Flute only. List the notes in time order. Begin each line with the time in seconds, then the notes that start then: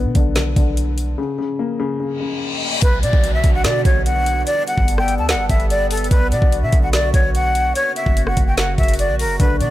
2.82 B4
3.03 D5
3.34 E5
3.54 F#5
3.65 D5
3.85 C#5
4.06 F#5
4.46 D5
4.67 F#5
4.98 G5
5.19 A5
5.29 F#5
5.49 E5
5.70 D5
5.91 A4
6.11 B4
6.32 D5
6.63 E5
6.83 F#5
6.93 D5
7.14 C#5
7.35 F#5
7.75 C#5
7.96 E5
8.27 F#5
8.47 G5
8.58 F#5
8.78 E5
8.99 D5
9.20 A#4
9.40 B4
9.60 D5